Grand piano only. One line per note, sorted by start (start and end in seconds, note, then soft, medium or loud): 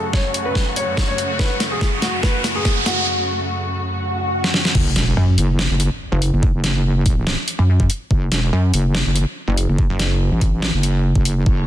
0.13 0.30 C#5 medium
0.45 0.62 B4 medium
0.76 0.93 C#5 medium
1.08 1.25 C#5 loud
1.39 1.56 B4 medium
1.71 1.87 G#4 medium
2.02 2.19 F#4 medium
2.23 2.40 B4 medium
2.55 2.71 G#4 medium
2.86 3.03 F#4 medium